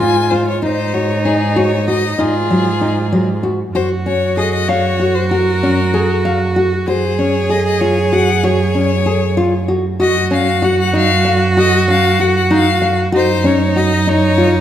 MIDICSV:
0, 0, Header, 1, 5, 480
1, 0, Start_track
1, 0, Tempo, 625652
1, 475, Time_signature, 5, 3, 24, 8
1, 11206, End_track
2, 0, Start_track
2, 0, Title_t, "Violin"
2, 0, Program_c, 0, 40
2, 0, Note_on_c, 0, 80, 87
2, 231, Note_on_c, 0, 72, 76
2, 243, Note_off_c, 0, 80, 0
2, 353, Note_off_c, 0, 72, 0
2, 365, Note_on_c, 0, 73, 73
2, 472, Note_off_c, 0, 73, 0
2, 487, Note_on_c, 0, 72, 87
2, 721, Note_on_c, 0, 73, 83
2, 733, Note_off_c, 0, 72, 0
2, 961, Note_on_c, 0, 68, 73
2, 972, Note_off_c, 0, 73, 0
2, 1206, Note_on_c, 0, 73, 84
2, 1218, Note_off_c, 0, 68, 0
2, 1441, Note_off_c, 0, 73, 0
2, 1446, Note_on_c, 0, 75, 78
2, 1691, Note_on_c, 0, 68, 81
2, 1702, Note_off_c, 0, 75, 0
2, 2643, Note_off_c, 0, 68, 0
2, 2879, Note_on_c, 0, 72, 80
2, 2986, Note_off_c, 0, 72, 0
2, 3120, Note_on_c, 0, 73, 81
2, 3341, Note_off_c, 0, 73, 0
2, 3358, Note_on_c, 0, 75, 80
2, 3468, Note_off_c, 0, 75, 0
2, 3479, Note_on_c, 0, 75, 82
2, 3593, Note_on_c, 0, 73, 93
2, 3605, Note_off_c, 0, 75, 0
2, 3949, Note_on_c, 0, 72, 79
2, 3960, Note_off_c, 0, 73, 0
2, 4072, Note_off_c, 0, 72, 0
2, 4076, Note_on_c, 0, 70, 77
2, 5004, Note_off_c, 0, 70, 0
2, 5269, Note_on_c, 0, 72, 84
2, 5514, Note_on_c, 0, 73, 81
2, 5526, Note_off_c, 0, 72, 0
2, 5755, Note_on_c, 0, 75, 75
2, 5766, Note_off_c, 0, 73, 0
2, 5865, Note_off_c, 0, 75, 0
2, 5870, Note_on_c, 0, 75, 75
2, 5991, Note_on_c, 0, 73, 80
2, 6002, Note_off_c, 0, 75, 0
2, 6234, Note_on_c, 0, 78, 87
2, 6245, Note_off_c, 0, 73, 0
2, 6475, Note_on_c, 0, 73, 92
2, 6487, Note_off_c, 0, 78, 0
2, 7434, Note_off_c, 0, 73, 0
2, 7675, Note_on_c, 0, 75, 98
2, 7897, Note_off_c, 0, 75, 0
2, 7925, Note_on_c, 0, 77, 84
2, 8166, Note_on_c, 0, 78, 79
2, 8178, Note_off_c, 0, 77, 0
2, 8278, Note_off_c, 0, 78, 0
2, 8282, Note_on_c, 0, 78, 81
2, 8390, Note_off_c, 0, 78, 0
2, 8414, Note_on_c, 0, 77, 92
2, 8739, Note_off_c, 0, 77, 0
2, 8884, Note_on_c, 0, 75, 102
2, 9103, Note_off_c, 0, 75, 0
2, 9130, Note_on_c, 0, 77, 94
2, 9367, Note_on_c, 0, 78, 82
2, 9378, Note_off_c, 0, 77, 0
2, 9480, Note_off_c, 0, 78, 0
2, 9489, Note_on_c, 0, 78, 70
2, 9593, Note_off_c, 0, 78, 0
2, 9611, Note_on_c, 0, 77, 90
2, 9938, Note_off_c, 0, 77, 0
2, 10095, Note_on_c, 0, 72, 102
2, 10327, Note_on_c, 0, 73, 84
2, 10339, Note_off_c, 0, 72, 0
2, 10564, Note_on_c, 0, 75, 85
2, 10575, Note_off_c, 0, 73, 0
2, 10803, Note_on_c, 0, 73, 100
2, 10815, Note_off_c, 0, 75, 0
2, 11206, Note_off_c, 0, 73, 0
2, 11206, End_track
3, 0, Start_track
3, 0, Title_t, "Nylon-string guitar"
3, 0, Program_c, 1, 24
3, 0, Note_on_c, 1, 65, 68
3, 119, Note_off_c, 1, 65, 0
3, 242, Note_on_c, 1, 65, 63
3, 363, Note_off_c, 1, 65, 0
3, 478, Note_on_c, 1, 63, 66
3, 600, Note_off_c, 1, 63, 0
3, 720, Note_on_c, 1, 66, 58
3, 842, Note_off_c, 1, 66, 0
3, 960, Note_on_c, 1, 63, 60
3, 1082, Note_off_c, 1, 63, 0
3, 1199, Note_on_c, 1, 66, 73
3, 1321, Note_off_c, 1, 66, 0
3, 1440, Note_on_c, 1, 66, 59
3, 1562, Note_off_c, 1, 66, 0
3, 1677, Note_on_c, 1, 63, 68
3, 1799, Note_off_c, 1, 63, 0
3, 1921, Note_on_c, 1, 54, 62
3, 2043, Note_off_c, 1, 54, 0
3, 2158, Note_on_c, 1, 63, 58
3, 2280, Note_off_c, 1, 63, 0
3, 2397, Note_on_c, 1, 54, 60
3, 2519, Note_off_c, 1, 54, 0
3, 2633, Note_on_c, 1, 66, 56
3, 2756, Note_off_c, 1, 66, 0
3, 2876, Note_on_c, 1, 66, 61
3, 2999, Note_off_c, 1, 66, 0
3, 3115, Note_on_c, 1, 61, 59
3, 3238, Note_off_c, 1, 61, 0
3, 3354, Note_on_c, 1, 68, 67
3, 3477, Note_off_c, 1, 68, 0
3, 3596, Note_on_c, 1, 77, 74
3, 3719, Note_off_c, 1, 77, 0
3, 3833, Note_on_c, 1, 66, 64
3, 3956, Note_off_c, 1, 66, 0
3, 4075, Note_on_c, 1, 66, 70
3, 4197, Note_off_c, 1, 66, 0
3, 4320, Note_on_c, 1, 61, 56
3, 4442, Note_off_c, 1, 61, 0
3, 4555, Note_on_c, 1, 68, 68
3, 4678, Note_off_c, 1, 68, 0
3, 4795, Note_on_c, 1, 77, 71
3, 4918, Note_off_c, 1, 77, 0
3, 5034, Note_on_c, 1, 66, 68
3, 5157, Note_off_c, 1, 66, 0
3, 5275, Note_on_c, 1, 66, 77
3, 5398, Note_off_c, 1, 66, 0
3, 5514, Note_on_c, 1, 61, 58
3, 5637, Note_off_c, 1, 61, 0
3, 5750, Note_on_c, 1, 68, 67
3, 5874, Note_off_c, 1, 68, 0
3, 5992, Note_on_c, 1, 65, 75
3, 6116, Note_off_c, 1, 65, 0
3, 6234, Note_on_c, 1, 66, 65
3, 6356, Note_off_c, 1, 66, 0
3, 6471, Note_on_c, 1, 66, 79
3, 6595, Note_off_c, 1, 66, 0
3, 6712, Note_on_c, 1, 61, 65
3, 6835, Note_off_c, 1, 61, 0
3, 6950, Note_on_c, 1, 68, 64
3, 7074, Note_off_c, 1, 68, 0
3, 7190, Note_on_c, 1, 65, 75
3, 7313, Note_off_c, 1, 65, 0
3, 7429, Note_on_c, 1, 66, 65
3, 7553, Note_off_c, 1, 66, 0
3, 7669, Note_on_c, 1, 66, 73
3, 7793, Note_off_c, 1, 66, 0
3, 7908, Note_on_c, 1, 61, 67
3, 8032, Note_off_c, 1, 61, 0
3, 8150, Note_on_c, 1, 66, 72
3, 8273, Note_off_c, 1, 66, 0
3, 8389, Note_on_c, 1, 63, 81
3, 8513, Note_off_c, 1, 63, 0
3, 8630, Note_on_c, 1, 77, 64
3, 8754, Note_off_c, 1, 77, 0
3, 8876, Note_on_c, 1, 66, 78
3, 8998, Note_off_c, 1, 66, 0
3, 9114, Note_on_c, 1, 61, 65
3, 9237, Note_off_c, 1, 61, 0
3, 9356, Note_on_c, 1, 66, 68
3, 9479, Note_off_c, 1, 66, 0
3, 9594, Note_on_c, 1, 63, 78
3, 9717, Note_off_c, 1, 63, 0
3, 9833, Note_on_c, 1, 77, 65
3, 9956, Note_off_c, 1, 77, 0
3, 10068, Note_on_c, 1, 66, 84
3, 10193, Note_off_c, 1, 66, 0
3, 10312, Note_on_c, 1, 61, 71
3, 10435, Note_off_c, 1, 61, 0
3, 10557, Note_on_c, 1, 66, 67
3, 10679, Note_off_c, 1, 66, 0
3, 10796, Note_on_c, 1, 63, 71
3, 10919, Note_off_c, 1, 63, 0
3, 11030, Note_on_c, 1, 65, 65
3, 11155, Note_off_c, 1, 65, 0
3, 11206, End_track
4, 0, Start_track
4, 0, Title_t, "Viola"
4, 0, Program_c, 2, 41
4, 0, Note_on_c, 2, 65, 86
4, 476, Note_on_c, 2, 63, 82
4, 488, Note_off_c, 2, 65, 0
4, 1677, Note_on_c, 2, 65, 79
4, 1688, Note_off_c, 2, 63, 0
4, 2636, Note_off_c, 2, 65, 0
4, 2875, Note_on_c, 2, 66, 84
4, 5268, Note_on_c, 2, 68, 98
4, 5280, Note_off_c, 2, 66, 0
4, 7430, Note_off_c, 2, 68, 0
4, 7675, Note_on_c, 2, 66, 101
4, 10044, Note_off_c, 2, 66, 0
4, 10080, Note_on_c, 2, 63, 94
4, 11206, Note_off_c, 2, 63, 0
4, 11206, End_track
5, 0, Start_track
5, 0, Title_t, "Cello"
5, 0, Program_c, 3, 42
5, 0, Note_on_c, 3, 44, 71
5, 475, Note_off_c, 3, 44, 0
5, 475, Note_on_c, 3, 44, 76
5, 1672, Note_off_c, 3, 44, 0
5, 1672, Note_on_c, 3, 44, 71
5, 2849, Note_off_c, 3, 44, 0
5, 2875, Note_on_c, 3, 42, 70
5, 5271, Note_off_c, 3, 42, 0
5, 5271, Note_on_c, 3, 42, 76
5, 7678, Note_off_c, 3, 42, 0
5, 7678, Note_on_c, 3, 42, 79
5, 10075, Note_off_c, 3, 42, 0
5, 10075, Note_on_c, 3, 42, 79
5, 11206, Note_off_c, 3, 42, 0
5, 11206, End_track
0, 0, End_of_file